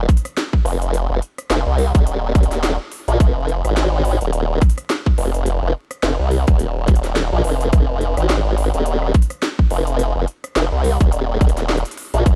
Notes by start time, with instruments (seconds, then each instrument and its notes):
0.09 kick, closed hi-hat
0.17 closed hi-hat
0.25 cross-stick, closed hi-hat
0.37 snare, closed hi-hat
0.53 kick
0.65 wobble bass F1, open hi-hat
0.82 closed hi-hat
0.94 closed hi-hat
1.10 wobble bass F1
1.22 closed hi-hat
1.38 cross-stick, closed hi-hat
1.50 wobble bass F1, snare, closed hi-hat
1.67 wobble bass C2
1.78 open hi-hat
1.95 wobble bass D#1, kick, closed hi-hat
2.07 closed hi-hat
2.35 wobble bass D#1, kick, closed hi-hat
2.43 closed hi-hat
2.51 snare, closed hi-hat
2.63 snare, closed hi-hat
2.92 open hi-hat
3.08 wobble bass A#1, closed hi-hat
3.20 wobble bass F1, kick, closed hi-hat
3.49 closed hi-hat
3.65 wobble bass G#1, cross-stick, closed hi-hat
3.77 snare, closed hi-hat
4.05 open hi-hat
4.21 wobble bass D#1, closed hi-hat
4.33 closed hi-hat
4.61 kick, cross-stick, closed hi-hat
4.70 closed hi-hat
4.78 cross-stick, closed hi-hat
4.90 snare, closed hi-hat
5.06 kick
5.18 wobble bass F1, open hi-hat
5.34 closed hi-hat
5.46 closed hi-hat
5.63 wobble bass F1
5.91 cross-stick, closed hi-hat
6.03 wobble bass F1, snare, closed hi-hat
6.19 wobble bass C2
6.31 open hi-hat
6.47 wobble bass D#1, kick, closed hi-hat
6.59 closed hi-hat
6.88 kick, closed hi-hat
6.95 closed hi-hat
7.04 snare, closed hi-hat
7.16 snare, closed hi-hat
7.33 wobble bass A#1
7.44 wobble bass F1, open hi-hat
7.61 closed hi-hat
7.73 wobble bass F1, kick, closed hi-hat
8.01 closed hi-hat
8.17 wobble bass G#1, cross-stick, closed hi-hat
8.29 snare, closed hi-hat
8.58 open hi-hat
8.74 wobble bass D#1, closed hi-hat
8.86 closed hi-hat
9.02 cross-stick
9.14 kick, closed hi-hat
9.22 closed hi-hat
9.30 cross-stick, closed hi-hat
9.42 snare, closed hi-hat
9.59 kick
9.71 wobble bass F1, open hi-hat
9.87 closed hi-hat
9.99 closed hi-hat
10.16 wobble bass F1
10.28 closed hi-hat
10.44 cross-stick, closed hi-hat
10.56 wobble bass F1, snare, closed hi-hat
10.72 wobble bass C2
10.84 open hi-hat
11.01 wobble bass D#1, kick, closed hi-hat
11.12 closed hi-hat
11.41 wobble bass D#1, kick, closed hi-hat
11.49 closed hi-hat
11.57 snare, closed hi-hat
11.69 snare, closed hi-hat
11.77 closed hi-hat
11.85 closed hi-hat
11.91 closed hi-hat
11.97 open hi-hat
12.14 wobble bass A#1, closed hi-hat
12.26 wobble bass F1, kick, closed hi-hat